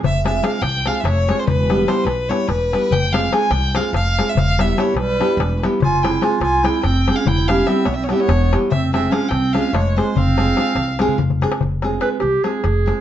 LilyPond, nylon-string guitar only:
\new Staff \with { instrumentName = "Nylon-string guitar" } { \time 7/8 \tempo 4 = 145 r8 <aes c' f' aes'>8 <aes c' f' aes'>8 r8 <aes c' f' aes'>8 r8 <aes c' f' aes'>8 | r8 <g b e' g'>8 <g b e' g'>8 r8 <g b e' g'>8 r8 <g b e' g'>8 | r8 <aes c' f' aes'>8 <aes c' f' aes'>8 r8 <aes c' f' aes'>8 r8 <aes c' f' aes'>8 | r8 <g b e' g'>8 <g b e' g'>8 r8 <g b e' g'>8 r8 <g b e' g'>8 |
r8 <aes c' f' aes'>8 <aes c' f' aes'>8 r8 <aes c' f' aes'>8 r8 <aes c' f' aes'>8 | r8 <g b e' g'>8 <g b e' g'>8 r8 <g b e' g'>8 r8 <g b e' g'>8 | r8 <aes c' f' aes'>8 <aes c' f' aes'>8 r8 <aes c' f' aes'>8 r8 <aes c' f' aes'>8 | r8 <aes c' f' aes'>8 <aes c' f' aes'>8 r8 <aes c' f' aes'>8 r8 <aes c' f' aes'>8 |
r8 <aes c' f' aes'>8 <aes c' f' aes'>8 r8 <aes c' f' aes'>8 r8 <aes c' f' aes'>8 | }